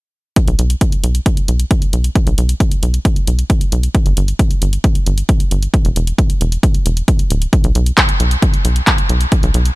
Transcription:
0.36 kick loud
0.36 closed hi-hat medium
0.48 0.56 B1 medium
0.48 closed hi-hat medium
0.59 0.76 B1 medium
0.59 closed hi-hat medium
0.70 closed hi-hat medium
0.81 kick loud
0.81 closed hi-hat medium
0.92 closed hi-hat medium
1.04 1.20 B1 medium
1.04 closed hi-hat medium
1.15 closed hi-hat medium
1.26 kick loud
1.26 closed hi-hat medium
1.37 closed hi-hat medium
1.48 1.65 B1 medium
1.48 closed hi-hat medium
1.60 closed hi-hat medium
1.71 kick loud
1.71 closed hi-hat medium
1.82 closed hi-hat medium
1.93 2.10 B1 medium
1.93 closed hi-hat medium
2.04 closed hi-hat medium
2.15 kick loud
2.15 closed hi-hat medium
2.27 2.35 B1 medium
2.27 closed hi-hat medium
2.38 2.55 B1 medium
2.38 closed hi-hat medium
2.49 closed hi-hat medium
2.60 kick loud
2.60 closed hi-hat medium
2.72 closed hi-hat medium
2.83 3.00 B1 medium
2.83 closed hi-hat medium
2.94 closed hi-hat medium
3.05 kick loud
3.05 closed hi-hat medium
3.16 closed hi-hat soft
3.27 3.44 B1 medium
3.27 closed hi-hat medium
3.39 closed hi-hat medium
3.50 kick loud
3.50 closed hi-hat medium
3.61 closed hi-hat soft
3.72 3.89 B1 medium
3.72 closed hi-hat medium
3.83 closed hi-hat soft
3.95 kick loud
3.95 closed hi-hat medium
4.06 4.14 G1 medium
4.06 closed hi-hat soft
4.17 4.34 G1 medium
4.17 closed hi-hat medium
4.28 closed hi-hat soft
4.39 kick loud
4.39 closed hi-hat medium
4.51 closed hi-hat soft
4.62 4.79 G1 medium
4.62 closed hi-hat medium
4.73 closed hi-hat medium
4.84 kick loud
4.84 closed hi-hat medium
4.95 closed hi-hat soft
5.06 5.23 G1 medium
5.06 closed hi-hat medium
5.18 closed hi-hat soft
5.29 kick loud
5.29 closed hi-hat medium
5.40 closed hi-hat soft
5.51 5.68 G1 medium
5.51 closed hi-hat medium
5.63 closed hi-hat soft
5.74 kick loud
5.74 closed hi-hat medium
5.85 5.93 E1 medium
5.85 closed hi-hat soft
5.96 6.13 E1 medium
5.96 closed hi-hat medium
6.07 closed hi-hat soft
6.18 kick loud
6.18 closed hi-hat medium
6.30 closed hi-hat soft
6.41 6.58 E1 medium
6.41 closed hi-hat medium
6.52 closed hi-hat soft
6.63 kick loud
6.63 closed hi-hat medium
6.75 closed hi-hat soft
6.86 7.03 E1 medium
6.86 closed hi-hat medium
6.97 closed hi-hat soft
7.08 kick loud
7.08 closed hi-hat medium
7.19 closed hi-hat soft
7.30 7.47 D1 medium
7.30 closed hi-hat medium
7.42 closed hi-hat soft
7.53 kick loud
7.53 closed hi-hat medium
7.64 7.72 B1 medium
7.64 closed hi-hat soft
7.75 7.92 B1 medium
7.75 closed hi-hat medium
7.86 closed hi-hat soft
7.98 kick loud
7.98 clap loud
7.98 closed hi-hat medium
8.09 closed hi-hat soft
8.20 8.37 B1 medium
8.20 closed hi-hat medium
8.31 closed hi-hat soft
8.42 kick loud
8.42 closed hi-hat medium
8.54 closed hi-hat medium
8.65 8.82 B1 medium
8.65 closed hi-hat medium
8.76 closed hi-hat soft
8.87 kick loud
8.87 clap loud
8.87 closed hi-hat medium
8.98 closed hi-hat soft
9.09 9.26 B1 medium
9.09 closed hi-hat medium
9.21 closed hi-hat soft
9.32 kick loud
9.32 closed hi-hat medium
9.43 9.52 B1 medium
9.43 closed hi-hat soft
9.54 9.71 B1 medium
9.54 closed hi-hat medium
9.65 closed hi-hat soft

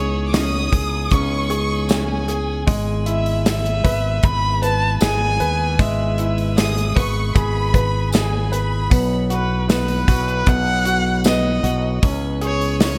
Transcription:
0.00 0.69 C#2 loud
0.00 2.64 C#3 medium
0.00 2.64 G#3 medium
0.00 8.86 B3 medium
0.00 0.32 C#4 medium
0.00 2.64 D#4 medium
0.00 2.64 E4 medium
0.00 0.71 G#4 medium
0.00 0.34 C#5 medium
0.26 0.33 D6 medium
0.33 1.09 C#4 medium
0.33 1.12 D#6 loud
0.33 snare loud
0.33 hi-hat pedal medium
0.33 open hi-hat medium
0.33 tambourine medium
0.72 1.09 C#2 medium
0.72 1.48 G#4 medium
0.72 kick medium
0.72 hi-hat pedal medium
0.72 open hi-hat medium
1.11 2.63 C#2 loud
1.11 1.87 C#4 medium
1.11 1.89 C#6 loud
1.11 kick medium
1.11 hi-hat pedal medium
1.11 open hi-hat medium
1.50 2.27 G#4 medium
1.50 hi-hat pedal medium
1.50 open hi-hat medium
1.89 2.65 C#4 medium
1.89 2.83 G#5 medium
1.89 snare loud
1.89 hi-hat pedal medium
1.89 open hi-hat medium
1.89 tambourine medium
2.28 2.66 G#4 medium
2.28 hi-hat pedal medium
2.28 open hi-hat medium
2.67 3.80 G#1 loud
2.67 5.75 G#3 medium
2.67 8.87 G#3 medium
2.67 12.98 E4 medium
2.67 kick loud
2.67 hi-hat pedal medium
2.67 open hi-hat medium
3.06 4.58 E4 medium
3.06 3.44 E5 medium
3.06 hi-hat pedal medium
3.06 open hi-hat medium
3.26 open hi-hat soft
3.46 4.26 E5 medium
3.46 snare loud
3.46 hi-hat pedal medium
3.46 open hi-hat medium
3.46 tambourine medium
3.65 hi-hat pedal medium
3.84 4.21 G#1 loud
3.84 4.61 B4 medium
3.84 kick medium
3.84 hi-hat pedal medium
3.84 open hi-hat medium
4.23 4.97 G#1 loud
4.23 4.63 B5 loud
4.23 kick loud
4.23 hi-hat pedal medium
4.23 open hi-hat medium
4.62 5.39 B4 medium
4.62 4.99 A5 loud
4.62 hi-hat pedal medium
4.62 open hi-hat medium
5.01 5.38 G#1 medium
5.01 6.53 G#4 medium
5.01 5.82 G#5 loud
5.01 snare loud
5.01 hi-hat pedal medium
5.01 open hi-hat medium
5.01 tambourine medium
5.40 5.77 D#2 medium
5.40 6.92 B4 medium
5.40 hi-hat pedal medium
5.40 open hi-hat medium
5.79 6.92 G#1 loud
5.79 8.87 G#3 medium
5.79 6.58 E5 medium
5.79 kick loud
5.79 hi-hat pedal medium
5.79 open hi-hat medium
6.18 7.70 E4 medium
6.18 hi-hat pedal medium
6.18 open hi-hat medium
6.38 open hi-hat soft
6.57 7.33 G#4 medium
6.57 6.93 D#6 loud
6.57 snare loud
6.57 hi-hat pedal medium
6.57 open hi-hat medium
6.57 tambourine medium
6.77 hi-hat pedal medium
6.96 7.33 G#1 medium
6.96 7.72 B4 medium
6.96 7.35 C#6 loud
6.96 kick medium
6.96 hi-hat pedal medium
6.96 open hi-hat medium
7.35 8.87 G#1 loud
7.35 8.12 G#4 medium
7.35 8.13 B5 loud
7.35 kick medium
7.35 hi-hat pedal medium
7.35 open hi-hat medium
7.74 8.50 B4 medium
7.74 kick medium
7.74 hi-hat pedal medium
7.74 open hi-hat medium
8.12 8.89 G#4 medium
8.12 8.49 G#5 medium
8.12 snare loud
8.12 hi-hat pedal medium
8.12 open hi-hat medium
8.12 tambourine medium
8.52 8.90 B4 medium
8.52 9.11 B5 medium
8.52 hi-hat pedal medium
8.52 open hi-hat medium
8.90 10.04 B1 loud
8.90 11.99 F#3 medium
8.90 11.99 B3 medium
8.90 9.67 B3 medium
8.90 kick loud
8.90 hi-hat pedal medium
8.90 open hi-hat medium
9.30 10.06 F#4 medium
9.30 9.68 B4 medium
9.30 hi-hat pedal medium
9.30 open hi-hat medium
9.68 10.45 B3 medium
9.68 10.50 B4 medium
9.68 snare loud
9.68 hi-hat pedal medium
9.68 open hi-hat medium
9.68 tambourine medium
9.88 open hi-hat medium
10.08 10.44 B1 medium
10.08 10.84 F#4 medium
10.08 kick medium
10.08 hi-hat pedal medium
10.08 open hi-hat medium
10.28 hi-hat pedal medium
10.46 11.60 B1 loud
10.46 11.23 B3 medium
10.46 11.25 F#5 loud
10.46 kick loud
10.46 hi-hat pedal medium
10.46 open hi-hat medium
10.85 11.62 F#4 medium
10.85 hi-hat pedal medium
10.85 open hi-hat medium
11.24 12.00 B3 medium
11.24 12.00 D#5 medium
11.24 snare loud
11.24 hi-hat pedal medium
11.24 open hi-hat medium
11.24 tambourine medium
11.63 12.00 B1 loud
11.63 12.01 F#4 medium
11.63 hi-hat pedal medium
11.63 open hi-hat medium
12.02 12.98 C#2 loud
12.02 12.98 C#3 medium
12.02 12.98 G#3 medium
12.02 12.98 B3 medium
12.02 12.80 C#4 medium
12.02 12.98 C#4 medium
12.02 kick loud
12.02 hi-hat pedal medium
12.02 open hi-hat medium
12.41 12.98 G#4 medium
12.41 12.80 C#5 medium
12.41 hi-hat pedal medium
12.41 open hi-hat medium
12.61 open hi-hat soft
12.80 12.98 C#4 medium
12.80 12.98 C#5 medium
12.80 snare loud
12.80 hi-hat pedal medium
12.80 open hi-hat medium
12.80 tambourine medium

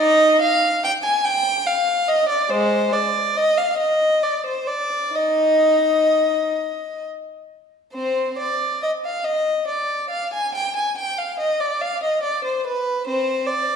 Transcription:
0.00 0.38 D#4 medium
0.00 0.41 D#5 loud
0.41 0.83 F5 medium
0.84 0.92 G5 loud
1.04 1.25 G#5 medium
1.24 1.67 G5 loud
1.67 2.09 F5 medium
2.08 2.30 D#5 medium
2.29 2.51 D5 medium
2.50 2.91 G#3 medium
2.50 2.94 C5 medium
2.93 3.37 D5 medium
3.37 3.59 D#5 medium
3.57 3.80 F5 medium
3.78 4.23 D#5 medium
4.23 4.46 D5 medium
4.46 4.69 C5 medium
4.67 5.16 D5 medium
5.15 6.55 D#4 medium
5.15 7.04 D#5 medium
7.94 8.36 C4 medium
7.94 8.36 C5 medium
8.39 8.81 D5 medium
8.83 8.91 D#5 medium
9.05 9.26 F5 medium
9.24 9.68 D#5 medium
9.68 10.11 D5 medium
10.10 10.32 F5 medium
10.34 10.54 G#5 medium
10.55 10.75 G5 medium
10.76 10.96 G#5 medium
10.98 11.18 G5 medium
11.18 11.39 F5 medium
11.40 11.60 D#5 medium
11.60 11.81 D5 medium
11.81 12.02 F5 medium
12.03 12.23 D#5 medium
12.23 12.44 D5 medium
12.44 12.65 C5 medium
12.67 13.06 B4 medium
13.07 13.45 C4 medium
13.07 13.47 C5 medium
13.47 13.76 D5 medium

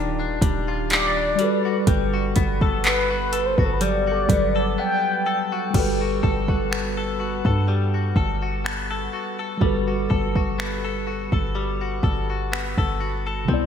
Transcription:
0.00 0.39 D#1 loud
0.00 1.33 D#3 medium
0.00 1.49 D#3 medium
0.00 0.42 G3 medium
0.00 0.19 D4 medium
0.00 1.34 D4 medium
0.00 0.67 F4 medium
0.00 1.36 F4 medium
0.00 1.37 G4 medium
0.19 1.16 D4 medium
0.42 1.35 D#1 loud
0.42 0.90 G3 medium
0.42 kick loud
0.42 closed hi-hat medium
0.68 1.49 F4 medium
0.90 1.38 G3 medium
0.90 1.84 D5 loud
0.90 clap loud
0.90 closed hi-hat medium
1.17 2.35 D4 medium
1.35 4.23 G3 medium
1.35 1.87 G3 medium
1.35 4.25 F#4 medium
1.35 closed hi-hat medium
1.41 4.26 A4 medium
1.41 4.28 B4 medium
1.65 2.13 F#4 medium
1.87 2.34 G1 loud
1.87 3.81 G3 medium
1.87 kick loud
1.87 closed hi-hat medium
2.14 3.10 F#4 medium
2.36 3.55 G1 loud
2.36 2.84 B3 medium
2.36 kick medium
2.36 closed hi-hat medium
2.61 3.32 A4 medium
2.61 kick medium
2.84 4.29 B3 medium
2.84 3.47 B4 medium
2.84 clap loud
2.84 closed hi-hat medium
3.10 3.59 F#4 medium
3.33 4.55 A4 medium
3.33 closed hi-hat medium
3.46 3.58 C5 medium
3.56 4.26 G1 loud
3.56 4.07 F#4 medium
3.56 3.66 B4 medium
3.56 kick medium
3.65 3.75 A4 medium
3.73 3.83 B4 medium
3.81 5.47 F#3 medium
3.81 5.74 G3 medium
3.81 4.78 D5 loud
3.81 closed hi-hat medium
4.07 5.52 F#4 medium
4.12 5.72 A4 medium
4.28 4.77 G1 loud
4.28 5.74 F#3 soft
4.28 5.69 G3 soft
4.28 4.78 B3 medium
4.28 5.75 A4 soft
4.28 kick loud
4.28 closed hi-hat medium
4.32 5.76 B4 medium
4.56 5.26 A4 medium
4.78 6.26 B3 medium
4.78 5.49 G5 loud
5.26 6.23 A4 medium
5.52 6.01 F#4 medium
5.71 6.21 G1 loud
5.71 9.56 G3 medium
5.71 9.57 F#4 medium
5.71 kick loud
5.71 crash medium
5.75 7.68 G3 medium
5.75 9.58 A4 medium
5.79 9.60 B4 medium
6.01 6.48 F#4 medium
6.23 7.42 G1 loud
6.23 6.96 A4 medium
6.23 kick medium
6.48 7.18 F#4 medium
6.48 kick medium
6.71 8.64 B3 medium
6.71 finger snap loud
6.97 7.45 A4 medium
7.20 7.93 F#4 medium
7.45 8.13 G2 medium
7.45 8.15 A4 medium
7.45 kick medium
7.68 9.61 G3 medium
7.94 8.41 F#4 medium
8.16 9.09 G1 loud
8.16 8.89 A4 medium
8.16 kick medium
8.42 9.12 F#4 medium
8.65 10.58 B3 medium
8.65 finger snap loud
8.91 9.38 A4 medium
9.13 9.87 F#4 medium
9.39 10.09 A4 medium
9.58 10.08 G1 loud
9.58 13.43 G3 medium
9.58 11.55 G3 medium
9.58 13.44 F#4 medium
9.58 kick loud
9.63 13.45 A4 medium
9.63 13.47 B4 medium
9.88 10.35 F#4 medium
10.10 11.29 G1 loud
10.10 10.83 A4 medium
10.10 kick medium
10.36 11.06 F#4 medium
10.36 kick medium
10.58 12.52 B3 medium
10.58 finger snap loud
10.85 11.32 A4 medium
11.07 11.80 F#4 medium
11.32 12.00 G1 loud
11.32 12.03 A4 medium
11.32 kick medium
11.55 13.48 G3 medium
11.81 12.29 F#4 medium
12.03 12.75 G1 loud
12.03 12.77 A4 medium
12.03 kick medium
12.30 12.99 F#4 medium
12.52 13.66 B3 medium
12.52 finger snap loud
12.78 13.46 G1 medium
12.78 13.26 A4 medium
12.78 kick medium
13.00 13.59 F#4 medium
13.27 13.59 A4 medium
13.45 13.66 C2 loud
13.45 13.66 C3 medium
13.45 13.66 B3 medium
13.45 13.66 C4 medium
13.45 kick loud
13.51 13.66 E4 medium
13.51 13.66 D5 medium

